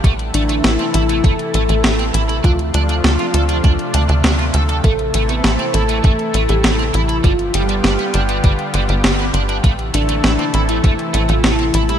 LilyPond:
<<
  \new Staff \with { instrumentName = "Soft synth lead" } { \time 4/4 \key a \minor \tempo 4 = 100 r8 d'8 e'8 e'8 a'2 | f'8 f'2. r8 | a'8. b'16 c''8 a'8 a'8. g'16 a'8 e'8 | f'8 g'4 r2 r8 |
r8 d'4~ d'16 e'16 e'8. f'16 e'8. g'16 | }
  \new Staff \with { instrumentName = "Overdriven electric guitar" } { \time 4/4 \key a \minor a16 r16 a16 a16 e'16 c'16 e'16 a16 a16 r16 a16 a16 a16 c'16 e'16 e'16 | d'16 r16 d'16 d'16 a'16 f'16 a'16 d'16 d'16 r16 d'16 d'16 d'16 f'16 a'16 a'16 | a16 r16 a16 a16 e'16 c'16 e'16 a16 a16 r16 a16 a16 a16 c'16 e'16 e'16 | g16 r16 g16 g16 d'16 b16 d'16 g16 g16 r16 g16 g16 g16 b16 d'16 d'16 |
a16 r16 a16 a16 e'16 c'16 e'16 a16 a16 r16 a16 a16 a16 c'16 e'16 e'16 | }
  \new Staff \with { instrumentName = "Analog synth pad" } { \time 4/4 \key a \minor << { <e e' a'>1 | <f d' f'>1 | <e e' a'>1 | <g f' g'>1 |
<e e' a'>1 | } \\ { <c a>1~ | <c a>1~ | <c a>1 | <d b>1 |
<c a>1 | } >> }
  \new Staff \with { instrumentName = "Analog synth bass" } { \clef bass \time 4/4 \key a \minor a,,8 a,,8 a,,16 r16 a,,8 a,,16 r16 a,,16 a,,16 a,,8 a,,8 | d,8 d,8 d,16 r16 d,8 d,16 r16 d,16 d,16 d,8 d,8 | a,,8 a,,8 a,,16 r16 a,,8 a,,16 r16 a,,16 a,,16 a,,8 a,,8 | g,,8 g,,8 g,,16 r16 g,,8 g,,16 r16 g,,16 g,,16 g,,8 g,,8 |
a,,8 a,,8 a,,16 r16 a,,8 a,,16 r16 a,,16 a,,16 a,,8 a,,8 | }
  \new DrumStaff \with { instrumentName = "Drums" } \drummode { \time 4/4 <hh bd>16 hh16 hh16 hh16 <hh sn>16 hh16 hh16 hh16 <hh bd>16 hh16 hh16 hh16 <hh sn>16 hh16 hh16 hh16 | <hh bd>16 hh16 hh16 hh16 <hh sn>16 hh16 hh16 hh16 <hh bd>16 hh16 hh16 hh16 <hh sn>16 hh16 hh16 hh16 | <hh bd>16 hh16 hh16 hh16 <hh sn>16 hh16 hh16 hh16 <hh bd>16 hh16 hh16 hh16 <hh sn>16 hh16 hh16 hh16 | <hh bd>16 hh16 hh16 hh16 <hh sn>16 hh16 hh16 hh16 <hh bd>16 hh16 hh16 hh16 <hh sn>16 hh16 hh16 hh16 |
<hh bd>16 hh16 hh16 hh16 <hh sn>16 hh16 hh16 hh16 <hh bd>16 hh16 hh16 hh16 <hh sn>16 hh16 hh16 hh16 | }
>>